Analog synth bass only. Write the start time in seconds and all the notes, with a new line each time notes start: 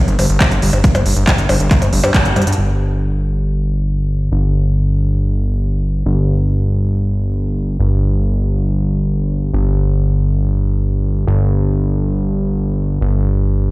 0.08 G1
0.19 G1
0.30 G1
0.51 G1
0.62 G1
0.73 G1
0.95 G1
1.06 G1
1.17 G1
1.38 G1
1.49 G1
1.60 G1
1.82 G1
1.93 G1
2.04 G2
2.25 G1
2.36 G2
2.47 G2
2.58 G1
4.32 G1
6.06 G1
7.80 G1
9.54 G1
11.27 G1
13.01 G1